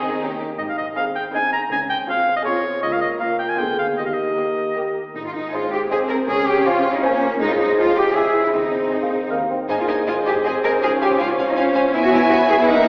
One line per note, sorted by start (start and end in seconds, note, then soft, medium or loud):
0.00 0.39 D#2 medium
0.00 0.19 D#3 soft
0.00 0.39 D#3 soft
0.00 0.22 G#3 medium
0.00 0.19 C4 medium
0.00 0.11 C4 soft
0.00 0.20 D#4 soft
0.00 0.39 D#4 soft
0.00 0.19 G#4 medium
0.00 0.22 G#4 soft
0.00 0.22 C5 soft
0.00 0.19 D#5 medium
0.00 1.74 D#5 soft
0.21 0.60 D#3 soft
0.21 0.40 A#3 soft
0.21 0.29 C#4 medium
0.21 0.29 D#4 soft
0.21 0.40 G4 soft
0.40 1.74 D#4 soft
0.40 0.49 D#4 soft
0.40 0.61 G4 soft
0.58 0.88 G#1 medium
0.58 0.89 G#2 medium
0.58 1.73 G#2 medium
0.58 0.62 D#5 medium
0.69 0.77 F5 medium
0.78 1.52 C4 soft
0.78 0.86 D#5 medium
0.97 1.10 C4 soft
0.97 1.25 C4 soft
0.97 1.25 D#4 medium
0.97 1.25 G#4 soft
0.97 1.34 G#4 soft
0.97 1.10 G#4 soft
0.97 1.05 F5 medium
1.15 2.26 C5 soft
1.15 1.24 G5 medium
1.34 1.62 C4 medium
1.34 1.48 C4 soft
1.34 1.62 D#4 medium
1.34 1.62 G#4 medium
1.34 1.48 G#4 soft
1.34 2.08 G#4 soft
1.34 1.52 G#5 medium
1.53 1.89 C4 soft
1.53 1.61 A#5 medium
1.71 2.01 C#2 medium
1.71 2.01 C#3 medium
1.71 2.82 C#3 medium
1.71 1.80 G#5 medium
1.90 2.63 C4 soft
1.90 1.98 G5 medium
2.09 2.22 C4 soft
2.09 2.37 C4 medium
2.09 2.36 F4 medium
2.09 2.22 F4 soft
2.09 2.36 G#4 soft
2.09 2.45 G#4 soft
2.09 2.36 F5 medium
2.28 2.85 C5 soft
2.36 2.41 D#5 medium
2.45 2.59 C4 soft
2.45 2.74 C4 medium
2.45 2.59 F4 medium
2.45 2.73 F4 medium
2.45 2.73 G#4 medium
2.45 2.85 G#4 medium
2.45 2.82 C#5 medium
2.65 2.85 C4 soft
2.83 3.13 C#2 medium
2.83 3.13 C#3 medium
2.83 3.61 C#3 medium
2.83 3.18 A#3 soft
2.83 3.18 F4 medium
2.83 2.94 D#5 medium
2.92 3.01 F5 medium
3.01 3.61 A#3 soft
3.01 3.10 D#5 medium
3.19 3.57 A#3 soft
3.19 3.49 A#3 medium
3.19 3.58 F4 soft
3.19 3.49 F4 medium
3.19 3.48 A#4 soft
3.19 3.61 A#4 soft
3.19 3.38 F5 medium
3.39 3.77 F4 soft
3.39 3.50 G5 medium
3.49 3.60 G#5 medium
3.58 3.89 D2 medium
3.58 3.89 D3 medium
3.58 4.00 D3 medium
3.58 3.88 B3 soft
3.58 3.98 B3 soft
3.58 3.87 F4 medium
3.58 3.87 G#4 soft
3.58 3.97 G#4 soft
3.58 3.78 G5 medium
3.79 4.00 F4 soft
3.79 4.00 G#4 soft
3.79 3.87 F5 medium
3.97 4.29 D#2 medium
3.97 4.29 D#3 soft
3.97 5.17 D#3 soft
3.97 4.96 A#3 soft
3.97 4.94 G4 soft
3.97 4.07 D#5 medium
4.06 4.15 F5 soft
4.13 4.96 D#5 medium
4.18 4.95 A#3 soft
4.37 4.66 A#3 soft
4.37 4.66 G4 soft
4.37 4.75 A#4 soft
4.37 4.67 A#4 soft
4.57 5.17 G4 soft
4.75 5.05 A#3 soft
4.75 5.05 G4 soft
4.75 5.05 A#4 soft
4.75 5.17 A#4 soft
4.97 5.17 A#3 soft
5.15 5.46 G#1 medium
5.15 6.31 G#2 medium
5.15 5.24 D#4 medium
5.25 5.35 F4 medium
5.34 6.47 G#3 soft
5.34 5.53 D#4 medium
5.53 5.89 G#3 medium
5.53 5.67 G#3 soft
5.53 5.67 C4 soft
5.53 5.72 F4 medium
5.53 5.67 G#4 soft
5.53 5.81 C5 medium
5.53 5.67 C5 soft
5.53 5.90 C5 soft
5.53 5.81 D#5 medium
5.53 5.82 G#5 soft
5.72 5.79 G4 medium
5.72 6.09 G#4 medium
5.90 6.05 G#3 soft
5.90 6.28 C4 medium
5.90 6.04 C4 medium
5.90 6.04 G#4 soft
5.90 5.99 G#4 medium
5.90 6.05 C5 medium
5.90 6.65 C5 soft
5.90 6.20 C5 medium
5.90 6.19 D#5 medium
5.90 6.19 G#5 medium
6.09 6.84 G#4 soft
6.09 6.17 A#4 medium
6.28 6.59 C#2 medium
6.28 7.42 C#3 medium
6.28 7.02 C#4 medium
6.28 6.47 G#4 medium
6.47 7.58 G#3 medium
6.47 6.66 G4 medium
6.65 6.80 F3 medium
6.65 6.80 C4 soft
6.65 6.94 F4 medium
6.65 6.80 F4 soft
6.65 6.79 C5 soft
6.65 7.03 C5 medium
6.65 6.94 C5 medium
6.65 6.94 F5 medium
6.65 6.94 G#5 medium
6.85 7.96 G#4 medium
6.94 7.04 D#4 medium
7.02 7.17 F3 medium
7.02 7.39 A#3 medium
7.02 7.18 C4 medium
7.02 7.40 C#4 medium
7.02 7.17 F4 medium
7.02 7.16 C5 medium
7.02 7.31 C5 medium
7.02 7.77 C5 medium
7.02 7.31 F5 medium
7.02 7.32 G#5 medium
7.22 7.42 F4 soft
7.40 7.70 C2 medium
7.40 8.17 C3 medium
7.40 7.78 G#3 medium
7.40 8.12 G#3 medium
7.40 7.50 D#4 medium
7.40 8.17 C5 medium
7.51 7.60 F4 medium
7.59 9.32 G#3 medium
7.59 7.78 D#4 medium
7.77 8.15 F3 medium
7.77 7.92 C4 soft
7.77 7.97 F4 medium
7.77 7.92 G#4 soft
7.77 8.17 C5 medium
7.77 8.06 C5 medium
7.77 8.06 D#5 medium
7.77 8.06 G#5 medium
7.97 8.16 G4 medium
8.15 8.46 C#2 medium
8.15 8.55 C#3 medium
8.15 8.54 E3 medium
8.15 8.53 G#3 medium
8.15 8.30 C#4 soft
8.15 8.30 E4 soft
8.15 8.44 G#4 medium
8.15 8.44 C#5 medium
8.15 8.53 E5 medium
8.15 8.44 E5 medium
8.15 8.44 G#5 medium
8.35 8.55 E4 soft
8.45 8.48 E4 medium
8.53 8.84 D#2 medium
8.53 9.30 D#3 medium
8.53 8.88 G#3 soft
8.53 9.48 C4 medium
8.53 9.29 D#4 medium
8.53 9.29 C5 soft
8.73 9.49 D#4 soft
8.92 8.97 G#3 medium
8.92 9.07 C4 soft
8.92 9.07 G#4 soft
8.92 9.32 C5 soft
8.92 9.21 C5 soft
8.92 9.21 D#5 soft
8.92 9.21 G#5 soft
9.02 9.07 A#3 soft
9.12 9.21 G#3 soft
9.12 10.84 D#5 soft
9.30 9.61 D#2 medium
9.30 9.70 D#3 soft
9.30 9.50 A#3 medium
9.30 9.45 A#3 soft
9.30 9.45 G4 soft
9.30 9.39 A#4 soft
9.30 9.59 A#4 soft
9.30 9.59 D#5 soft
9.30 9.59 G5 soft
9.50 9.59 C4 soft
9.50 10.63 D#4 soft
9.50 9.71 G4 soft
9.68 9.76 G#1 medium
9.68 10.84 G#2 medium
9.68 10.83 G#3 medium
9.68 10.04 A#3 medium
9.68 9.78 D#4 medium
9.68 9.76 C5 soft
9.68 11.89 C5 medium
9.68 9.76 D#5 soft
9.68 9.77 G#5 medium
9.79 9.83 F4 medium
9.88 9.96 G#1 soft
9.88 11.00 C4 soft
9.88 9.96 D#4 medium
9.88 9.96 C5 soft
9.88 9.95 D#5 soft
9.88 9.96 G#5 soft
10.07 10.14 G#1 medium
10.07 10.45 G#3 soft
10.07 10.21 C4 soft
10.07 10.15 F4 medium
10.07 10.21 G#4 soft
10.07 10.45 G#4 soft
10.07 10.15 C5 soft
10.07 10.14 D#5 soft
10.07 10.15 G#5 soft
10.26 10.33 G#1 soft
10.26 10.34 G4 medium
10.26 10.33 C5 soft
10.26 11.38 C5 soft
10.26 10.33 D#5 soft
10.26 10.34 G#5 soft
10.44 10.52 G#1 medium
10.44 10.81 C4 medium
10.44 10.59 C4 soft
10.44 10.52 G#4 medium
10.44 11.19 G#4 soft
10.44 10.59 G#4 soft
10.44 10.52 C5 soft
10.44 10.52 D#5 soft
10.44 10.52 G#5 soft
10.63 10.71 G#1 medium
10.63 10.84 D#4 soft
10.63 10.71 A#4 medium
10.63 10.71 C5 soft
10.63 10.71 D#5 soft
10.63 10.72 G#5 medium
10.82 10.89 C#2 medium
10.82 11.95 C#3 medium
10.82 11.96 F3 medium
10.82 11.91 C#4 medium
10.82 10.90 G#4 medium
10.82 10.90 C5 medium
10.82 10.90 F5 medium
10.82 10.90 G#5 medium
11.01 11.08 C#2 medium
11.01 11.95 C4 soft
11.01 11.19 G4 medium
11.01 11.09 C5 soft
11.01 11.09 F5 soft
11.01 11.09 G#5 medium
11.19 11.27 C#2 medium
11.19 11.33 C4 soft
11.19 11.33 F4 soft
11.19 11.28 F4 medium
11.19 11.55 G#4 medium
11.19 11.27 C5 medium
11.19 11.27 F5 soft
11.19 11.27 G#5 soft
11.38 11.45 C#2 medium
11.38 11.95 C5 medium
11.38 11.46 C5 soft
11.38 11.46 F5 medium
11.38 11.46 G#5 medium
11.49 11.52 D#4 medium
11.56 11.64 C#2 medium
11.56 11.70 C4 medium
11.56 11.93 C#4 medium
11.56 11.70 F4 medium
11.56 12.30 G#4 medium
11.56 11.64 C5 medium
11.56 11.64 F5 medium
11.56 11.64 G#5 medium
11.75 11.83 C#2 medium
11.75 11.95 F4 soft
11.75 11.83 C5 medium
11.75 11.83 F5 medium
11.75 11.82 G#5 medium
11.93 12.64 E2 medium
11.93 12.70 E2 medium
11.93 12.88 E3 medium
11.93 12.67 B3 medium
11.93 11.97 E4 medium
11.93 12.69 C#5 medium
11.93 12.29 C#5 medium
11.93 12.65 E5 medium
11.93 12.64 G#5 medium
12.04 12.13 F#4 medium
12.12 12.88 C#4 medium
12.12 12.20 E4 medium
12.30 12.44 C#4 soft
12.30 12.44 E4 medium
12.30 12.38 F#4 medium
12.30 12.69 B4 medium
12.49 12.53 G#4 medium
12.49 12.88 C#5 medium
12.59 12.68 E4 medium
12.68 12.88 F#2 medium
12.68 12.88 A#3 medium
12.68 12.82 A#3 medium
12.68 12.88 D#4 medium
12.68 12.82 E4 medium
12.68 12.88 A#4 medium
12.68 12.88 E5 medium
12.68 12.88 F#5 medium